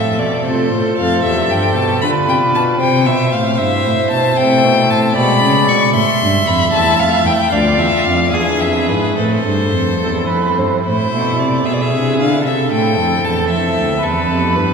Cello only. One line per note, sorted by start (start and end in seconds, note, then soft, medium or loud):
0.00 0.20 A2 soft
0.18 0.44 B2 soft
0.45 0.70 C3 medium
0.71 0.79 A2 medium
0.98 1.23 F2 medium
1.24 1.49 E2 medium
1.50 1.75 G2 soft
1.76 2.02 B2 medium
2.02 2.10 D3 medium
2.28 2.36 C3 medium
2.54 2.80 B2 medium
2.80 3.08 C3 medium
3.06 3.32 B2 medium
3.33 3.60 A2 medium
3.59 3.84 G2 medium
3.85 3.93 A2 medium
4.11 4.36 B2 medium
4.37 4.65 C3 medium
4.63 4.89 B2 medium
4.90 4.98 A2 medium
5.16 5.42 B2 medium
5.42 5.68 C#3 medium
5.69 5.77 B2 medium
5.95 6.03 A2 medium
6.21 6.46 G2 medium
6.46 6.72 F2 medium
6.72 6.98 E2 medium
6.99 7.07 F2 medium
7.25 7.33 E2 medium
7.51 7.78 D2 medium
7.78 7.86 E2 medium
8.05 8.32 F2 medium
8.32 8.40 E2 medium
8.60 8.90 F2 medium
8.89 9.17 G#2 medium
9.17 9.45 A2 medium
9.46 9.75 G2 medium
9.73 10.01 F2 soft
10.01 10.29 E2 soft
10.30 10.38 F2 medium
10.58 10.66 G2 soft
10.86 11.11 A2 medium
11.13 11.41 B2 medium
11.39 11.65 C3 soft
11.66 11.94 B2 medium
11.93 12.21 C3 soft
12.19 12.47 D3 medium
12.45 12.71 C3 medium
12.71 12.99 A2 soft
12.98 13.23 F2 soft
13.24 13.51 E2 medium
13.50 13.78 F2 medium
13.77 14.02 D2 medium
14.03 14.28 E2 medium
14.29 14.57 F2 medium
14.56 14.74 G2 soft